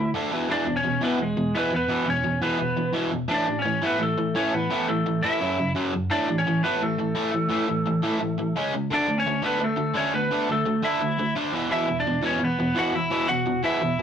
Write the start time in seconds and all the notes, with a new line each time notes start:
Already playing: D3 E4 E5
0.00 A3
0.14 D3 A3 D4
0.32 E2 B2 E3
0.49 E2 B2 E3 D4 D5
0.67 E2 B2
0.76 C#4 C#5
0.84 E2 B2
1.01 E2 B2 E3 B3 B4
1.19 E2 B2 G#3 G#4
1.37 E2 B2
1.55 E2 B2 E3 B3 B4
1.72 E2 B2 B3
1.76 B4
1.89 E2 B2 E3
2.06 E2 B2 C#4 C#5
2.23 E2 B2
2.42 E2 B2 E3 B3 B4
2.59 E2 B2
2.76 E2 B2
2.93 E2 B2 E3
3.11 E2 B2
3.28 A2 E3 A3 D4
3.34 D5
3.47 A2 E3
3.59 C#4 C#5
3.66 A2 E3
3.83 A2 E3 A3 B3
3.87 B4
3.99 A2 E3 A3 A4
4.18 A2 E3
4.35 A2 E3 A3 C#4 C#5
4.53 A2 E3 B3 B4
4.70 A2 E3 A3
4.88 A2 E3 A3 A4
5.06 A2 E3
5.23 A2 E3 A3 E4 E5
5.40 F#2 C#3 F#3
5.59 F#2 C#3
5.75 F#2 C#3 F#3
5.93 F#2 C#3
6.10 A2 E3 A3 D4 D5
6.29 A2 E3
6.38 C#4 C#5
6.46 A2 E3
6.63 A2 E3 A3 B3 B4
6.81 A2 E3 A3 A4
6.99 A2 E3
7.15 A2 E3 A3
7.32 A2 E3
7.50 A2 E3 A3
7.69 A2 E3
7.87 A2 E3
8.03 A2 E3 A3
8.20 A2 E3
8.38 A2 E3
8.56 C#3 G#3 C#4
8.73 C#3 G#3
8.91 D3 A3 D4 D5
9.08 D3 A3
9.18 C#4 C#5
9.26 D3 A3
9.42 D3 A3 B3 D4 B4
9.60 D3 A3
9.64 A4
9.77 D3 A3
9.94 D3 A3 D4 C#5
9.99 C#4
10.14 D3 A3 B3 B4
10.31 D3 A3 D4
10.50 D3 A3 A4
10.66 D3 A3
10.83 D3 A3 D4 E4 E5
11.01 D3 A3
11.19 D3 A3
11.35 D3 A3 D4
11.53 E2 B2 E3
11.71 E2 B2 E3 E4 E5
11.87 E2 B2
12.00 D4 D5
12.07 E2 B2
12.22 E2 B2 E3
12.26 C#4 C#5
12.39 E2 B2
12.44 B3 B4
12.59 E2 B2
12.75 E2 B2 E3 F#4 F#5
12.95 E2 B2 E4 E5
13.11 E2 B2 E3
13.28 E2 B2 F#4 F#5
13.46 E2 B2
13.63 E2 B2 E3 E4 E5
13.82 E2 B2
13.99 E2 B2